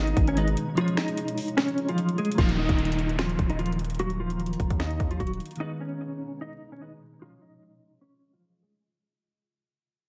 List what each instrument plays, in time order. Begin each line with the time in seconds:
Already playing: 808-style bass G#1, ambient pad B2 G#3 D#4, synth keys D#3 G#3 B3 G#4 B4, clean electric guitar D#4 D#5
0.07 closed hi-hat
0.17 808-style bass G#1, kick, closed hi-hat
0.27 clean electric guitar C#4 C#5, closed hi-hat
0.36 synth keys D#3 G#3 B3 G#4 B4, clean electric guitar D#4 D#5, closed hi-hat
0.48 closed hi-hat
0.57 closed hi-hat
0.75 ambient pad C#3 F4, synth keys F3 G#3 C#4, clean electric guitar F3 F4, closed hi-hat
0.79 synth keys G#4 C#5
0.88 closed hi-hat
0.97 clean electric guitar D#4 D#5, finger snap, snare, closed hi-hat
1.08 closed hi-hat
1.17 closed hi-hat
1.28 closed hi-hat
1.38 closed hi-hat, open hi-hat
1.48 closed hi-hat
1.57 clean electric guitar C#4 C#5, finger snap, snare, closed hi-hat
1.68 closed hi-hat
1.78 closed hi-hat
1.89 clean electric guitar F3 F4, closed hi-hat
1.98 closed hi-hat
2.09 closed hi-hat
2.18 clean electric guitar G#3 G#4, closed hi-hat
2.25 closed hi-hat
2.32 synth keys D#3, closed hi-hat
2.38 808-style bass D#1, ambient pad D#3 A#3 D#4, clean electric guitar F3 F4, synth keys A#3 D#4 A#4, kick, closed hi-hat, downlifter
2.49 closed hi-hat
2.59 clean electric guitar D#4 D#5
2.69 808-style bass D#1, kick, closed hi-hat
2.79 closed hi-hat
2.85 closed hi-hat
2.92 closed hi-hat
2.99 closed hi-hat
3.09 closed hi-hat
3.19 clean electric guitar F3 F4, finger snap, snare, closed hi-hat
3.29 closed hi-hat
3.39 808-style bass D#1, kick, closed hi-hat
3.49 clean electric guitar D#4 D#5, closed hi-hat
3.59 clean electric guitar F3 F4, closed hi-hat
3.66 closed hi-hat
3.72 closed hi-hat
3.79 closed hi-hat
3.85 closed hi-hat
3.90 closed hi-hat
3.95 closed hi-hat
3.99 clean electric guitar F#3 F#4, closed hi-hat
4.10 closed hi-hat
4.20 clean electric guitar F3 F4
4.30 closed hi-hat
4.40 closed hi-hat
4.46 closed hi-hat
4.53 closed hi-hat
4.60 808-style bass D#1, kick, closed hi-hat
4.70 808-style bass D#2, kick, closed hi-hat
4.80 clean electric guitar D#4 D#5, finger snap, snare, closed hi-hat
4.90 closed hi-hat
5.00 808-style bass D#2, kick, closed hi-hat
5.11 clean electric guitar F3 F4, closed hi-hat
5.20 808-style bass D#1, clean electric guitar F#3 F#4, kick, closed hi-hat
5.27 closed hi-hat
5.33 closed hi-hat
5.40 closed hi-hat
5.46 closed hi-hat
5.51 closed hi-hat
5.56 synth keys D#3 G#3 B3, closed hi-hat
5.60 ambient pad B2 G#3 D#4, clean electric guitar D#4 D#5, synth keys G#4 B4
5.80 clean electric guitar C#4 C#5
6.41 clean electric guitar D#4 D#5
6.72 clean electric guitar C#4 C#5
6.80 synth keys D#3 G#3 B3 G#4 B4, clean electric guitar D#4 D#5
7.19 ambient pad C#3 G#3 F4, synth keys F3 G#3 C#4, clean electric guitar F3 F4
7.24 synth keys G#4 C#5
7.41 clean electric guitar D#4 D#5
8.01 clean electric guitar C#4 C#5
8.33 clean electric guitar F3 F4
8.62 clean electric guitar G#3 G#4